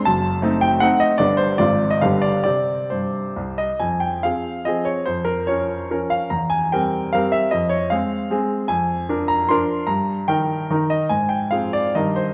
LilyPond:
<<
  \new Staff \with { instrumentName = "Grand piano" } { \time 3/4 \key c \minor \tempo 4 = 146 a''4. g''8 fis''8 dis''8 | d''8 c''8 d''8. ees''16 f''8 d''8 | d''4 c''4. ees''8 | \key f \minor aes''8 g''8 f''4 ees''8 des''8 |
c''8 bes'8 des''4 r8 f''8 | bes''8 aes''8 g''4 f''8 e''8 | ees''8 des''8 f''4 r4 | \key ees \major aes''4. bes''8 c'''4 |
bes''4 g''4. ees''8 | aes''8 g''8 f''8 d''8 ees''8 c''8 | }
  \new Staff \with { instrumentName = "Grand piano" } { \time 3/4 \key c \minor <fis,, fis,>4 <a c' dis'>4 <a c' dis'>4 | <g,, g, g b d'>4 <aes,, aes, f c' f'>4 <g,, g, d b g'>4 | <c c' g'>4 g,4 c,4 | \key f \minor f,4 <f c' aes'>4 <f c' aes'>4 |
f,4 <f des' bes'>4 <f des' bes'>4 | e,4 <g c' bes'>4 <g c' bes'>4 | f,4 <aes c' aes'>4 <aes c' aes'>4 | \key ees \major f,4 <f d' bes'>4 <f d' bes'>4 |
g,4 <ees ees' bes'>4 <ees ees' bes'>4 | aes,4 <f c' aes'>4 <g, ees ees' bes'>4 | }
>>